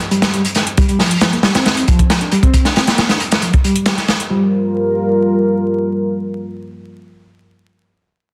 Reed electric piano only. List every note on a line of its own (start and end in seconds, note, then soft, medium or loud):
0.11 0.32 G3 medium
0.34 0.41 G3 medium
0.78 0.85 G3 loud
0.89 0.98 G3 medium
0.99 1.32 F3 loud
1.33 1.37 A#3 medium
1.43 1.54 G3 loud
1.55 1.87 C4 loud
1.88 2.20 F3 loud
2.21 2.29 D4 medium
2.32 2.42 G3 medium
2.43 2.64 C4 loud
2.65 2.73 D4 medium
2.76 2.86 C4 medium
2.88 3.08 A#3 medium
3.10 3.17 D4 medium
3.43 3.50 F3 medium
3.65 3.85 G3 medium
3.86 3.94 G3 medium
4.30 4.51 G3 medium